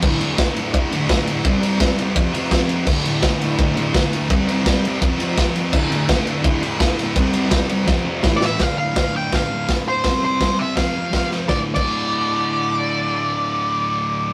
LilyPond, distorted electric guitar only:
\new Staff \with { instrumentName = "Distorted electric guitar" } { \clef bass \time 4/4 \key d \minor \tempo 4 = 167 <d, a, d>8 <a, d>8 <d, a, d>8 <a, d>8 <d, a, d>8 <d, a, d>8 <d, a, d>8 <a, d>8 | <c g c'>8 <g c'>8 <c g c'>8 <g c'>8 <f, c f>8 <f, c f>8 <f, c f>8 <c f>8 | <d, a, d>8 <a, d>8 <d, a, d>8 <a, d>8 <d, a, d>8 <d, a, d>8 <d, a, d>8 <a, d>8 | <c g c'>8 <g c'>8 <c g c'>8 <g c'>8 <f, c f>8 <f, c f>8 <f, c f>8 <c f>8 |
<d, a, d>8 <a, d>8 <d, a, d>8 <a, d>8 <d, a, d>8 <d, a, d>8 <d, a, d>8 <a, d>8 | <c g c'>8 <g c'>8 <c g c'>8 <g c'>8 <f, c f>8 <f, c f>8 <a, e a>8 <e a>8 | <d, a, d>8 <a, d>8 <d, a, d>8 <a, d>4 <a, d>8 <d, a, d>4 | <c g c'>8 <g c'>8 <c g c'>8 <g c'>8 <f, c f>8 <c f>8 <f, c f>4 |
<d, a, d>16 r8 <d, a, d>2.~ <d, a, d>16~ | <d, a, d>1 | }